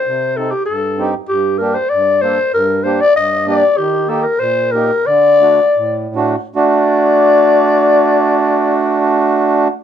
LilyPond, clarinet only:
\new Staff \with { instrumentName = "Clarinet" } { \time 2/4 \tempo 4 = 94 c''8 a'16 g'16 a'8. r16 | g'8 bes'16 c''16 d''8 c''8 | bes'8 c''16 d''16 ees''8 d''8 | g'8 a'16 bes'16 c''8 bes'8 |
d''4. r8 | d''2~ | d''2 | }